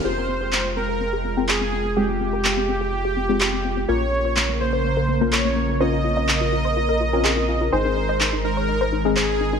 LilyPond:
<<
  \new Staff \with { instrumentName = "Supersaw synth" } { \time 4/4 \key f \minor \tempo 4 = 125 c''4. bes'4. aes'4 | g'1 | des''4. c''4. des''4 | ees''1 |
c''4. bes'4. aes'4 | }
  \new Staff \with { instrumentName = "Synth stab" } { \time 4/4 \key f \minor <c' f' g' aes'>2~ <c' f' g' aes'>8. <c' f' aes' g''>4~ <c' f' aes' g''>16 | <aes c' f' g'>2~ <aes c' f' g'>8. <aes c' f' g'>4~ <aes c' f' g'>16 | <bes des' f' bes'>2~ <bes des' f' bes'>8. <bes des' f' bes'>4~ <bes des' f' bes'>16 | <c' des' f' bes'>2~ <c' des' f' bes'>8. <c' des' f' bes'>4~ <c' des' f' bes'>16 |
<aes c' ees' aes'>2~ <aes c' ees' aes'>8. <aes c' ees' aes'>4~ <aes c' ees' aes'>16 | }
  \new Staff \with { instrumentName = "Synth arpeggio sound" } { \time 4/4 \key f \minor aes'16 c'16 c'16 c''16 c'16 c'16 c'16 bes'16 c'16 aes'16 c'16 c'16 aes'16 c'16 c'16 c'16 | g'16 c'16 c'16 bes'16 c'16 c'16 c'16 aes'16 c'16 g'16 c'16 c'16 g'16 c'16 c'16 c'16 | bes'16 bes16 bes16 des''16 bes16 bes16 bes16 c''16 bes16 bes'16 bes16 bes16 bes'16 bes16 bes16 bes16 | c''16 f'16 f'16 ees''16 f'16 f'16 f'16 c''16 f'16 bes'16 f'16 f'16 aes'16 f'16 f'16 f'16 |
c''16 ees'16 ees'16 ees''16 ees'16 ees'16 ees'16 des''16 ees'16 c''16 ees'16 ees'16 c''16 ees'16 ees'16 ees'16 | }
  \new Staff \with { instrumentName = "Analog synth pad" } { \time 4/4 \key f \minor << { g''1 | r1 | bes'1~ | bes'1~ |
bes'1 | } \\ { <aes f'>1~ | <aes f'>1 | <des bes>1~ | <des bes>1 |
<ees aes>1 | } >> }
  \new Staff \with { instrumentName = "Analog synth bass" } { \clef bass \time 4/4 \key f \minor f,,1~ | f,,1 | bes,,1~ | bes,,1 |
aes,,1 | }
  \new DrumStaff \with { instrumentName = "Drums" } \drummode { \time 4/4 r4 hc4 r4 hc4 | r4 hc4 r4 hc4 | r4 hc4 r4 hc4 | r4 hc4 r4 hc4 |
r4 hc4 r4 hc4 | }
>>